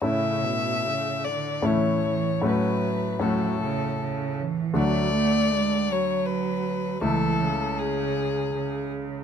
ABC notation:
X:1
M:3/4
L:1/8
Q:1/4=79
K:A
V:1 name="Violin"
e3 d c2 | B2 A3 z | d3 c B2 | A2 G3 z |]
V:2 name="Grand piano"
[A,,A,CE]4 [A,,A,CE]2 | [A,,A,CF]2 [A,,A,CF]4 | [D,,A,DF]6 | [C,,A,E]6 |]
V:3 name="Cello" clef=bass
C, B,, C, D, E, E, | F,2 F, C, C, E, | F, A, G, F,3 | E, C,3 C,2 |]